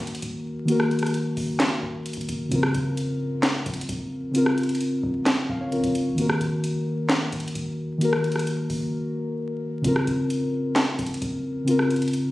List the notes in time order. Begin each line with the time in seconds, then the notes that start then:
Already playing: D#3 A#3 F#4 A#4
0.00 D#1
0.07 closed hi-hat
0.15 closed hi-hat
0.22 D#1, closed hi-hat
0.65 D#3 A#3, closed hi-hat
0.69 F#4 A#4
0.80 cross-stick
0.91 closed hi-hat
0.99 cross-stick, closed hi-hat
1.06 closed hi-hat
1.14 closed hi-hat
1.37 F#1, open hi-hat
1.60 snare, clap, closed hi-hat
1.83 D#1
2.06 closed hi-hat
2.13 D#1, closed hi-hat
2.21 closed hi-hat
2.29 F#1, closed hi-hat
2.48 A#1 C#3 C4, closed hi-hat
2.53 F4 A#4
2.63 cross-stick
2.74 A#1, closed hi-hat
2.97 closed hi-hat
3.43 snare, clap, closed hi-hat
3.66 A#1, closed hi-hat
3.74 closed hi-hat
3.81 closed hi-hat
3.89 A#1, closed hi-hat
4.31 C#3 C4, closed hi-hat
4.36 F4 A#4
4.46 cross-stick
4.58 closed hi-hat
4.63 closed hi-hat
4.69 closed hi-hat
4.75 closed hi-hat
4.81 closed hi-hat
5.03 A#1
5.26 snare, clap, closed hi-hat
5.49 A#1 F5
5.61 C#5
5.71 C#2 C#3 C4 F4 A#4, closed hi-hat
5.84 A#1, closed hi-hat
5.95 closed hi-hat
6.07 C#2
6.15 D#1 D#3 A#3, closed hi-hat
6.19 F#4 A#4
6.29 cross-stick
6.41 D#1, closed hi-hat
6.64 closed hi-hat
7.09 C#1, snare, clap, closed hi-hat
7.32 D#1, closed hi-hat
7.40 closed hi-hat
7.48 closed hi-hat
7.55 D#1, closed hi-hat
7.98 D#3 A#3, closed hi-hat
8.02 F#4 A#4
8.13 cross-stick
8.24 closed hi-hat
8.32 cross-stick, closed hi-hat
8.39 closed hi-hat
8.47 closed hi-hat
8.70 F#1, open hi-hat
9.81 A#1 C#3 C4, closed hi-hat
9.86 F4 A#4
9.96 cross-stick
10.07 A#1, closed hi-hat
10.30 closed hi-hat
10.76 snare, clap, closed hi-hat
10.99 A#1, closed hi-hat
11.06 closed hi-hat
11.14 closed hi-hat
11.22 A#1, closed hi-hat
11.64 C#3 C4, closed hi-hat
11.68 F4 A#4
11.79 cross-stick
11.90 closed hi-hat
11.96 closed hi-hat
12.02 closed hi-hat
12.08 closed hi-hat
12.13 closed hi-hat